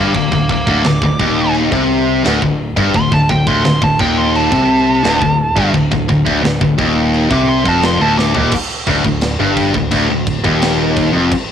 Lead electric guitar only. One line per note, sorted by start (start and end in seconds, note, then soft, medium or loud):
0.00 0.13 F5 medium
0.00 0.14 D6 medium
0.16 0.48 F5 medium
0.16 0.50 D6 medium
0.50 0.82 F5 medium
0.50 0.84 D6 loud
0.87 1.54 D6 loud
2.96 3.12 C6 loud
3.14 3.30 A5 loud
3.30 3.47 G5 loud
3.47 3.64 C6 medium
3.65 3.84 C6 loud
3.84 4.00 A5 medium
4.00 4.17 G5 loud
4.18 4.36 C6 medium
4.36 5.71 A5 loud
7.33 7.49 D6 medium
7.49 7.68 C6 loud
7.68 7.84 A5 medium
7.86 8.02 C6 medium
8.02 8.18 A5 medium
8.18 8.52 D6 loud